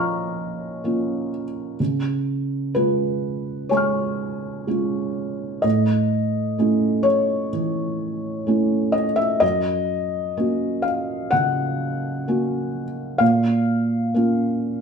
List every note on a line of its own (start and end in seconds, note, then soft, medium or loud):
0.00 1.42 F3 soft
0.00 0.84 A#3 soft
0.00 0.85 C#4 soft
0.00 0.85 F4 soft
0.00 1.31 C#5 medium
0.00 1.81 D#5 medium
0.00 1.81 F5 medium
0.00 1.76 A#5 soft
0.00 1.78 C#6 soft
0.00 1.79 F6 soft
0.84 1.76 A#3 soft
0.84 1.76 C#4 soft
0.84 1.76 F4 soft
1.80 2.73 C#3 soft
2.75 3.68 G#3 soft
2.75 3.68 C#4 soft
2.75 3.68 F4 soft
2.75 3.71 B4 medium
3.69 4.66 G#3 soft
3.69 5.63 C#5 medium
3.69 5.60 G#5 soft
3.74 5.61 C#6 soft
3.74 5.63 F6 soft
4.67 5.60 G#3 soft
4.67 5.60 C#4 soft
4.67 5.60 F4 soft
5.62 6.56 A2 soft
5.62 7.05 D#5 medium
6.58 7.49 A3 soft
6.58 7.50 C#4 soft
6.58 7.50 E4 soft
7.03 8.94 C#5 medium
7.53 9.04 E3 soft
8.47 9.38 A3 soft
8.47 9.38 C#4 soft
8.47 9.39 E4 soft
8.92 9.17 D#5 medium
9.16 9.41 E5 medium
9.40 10.34 F#2 medium
9.40 10.84 D#5 medium
10.37 11.28 A#3 soft
10.37 11.28 C#4 soft
10.37 11.29 F#4 soft
10.82 11.31 F5 medium
11.31 12.83 C#3 soft
11.31 13.20 F#5 medium
12.28 13.17 A#3 soft
12.28 13.17 C#4 soft
12.28 13.17 F#4 soft
13.18 14.12 A#2 medium
13.18 14.81 F5 medium
14.14 14.81 A#3 soft
14.14 14.81 C#4 soft
14.14 14.81 F4 soft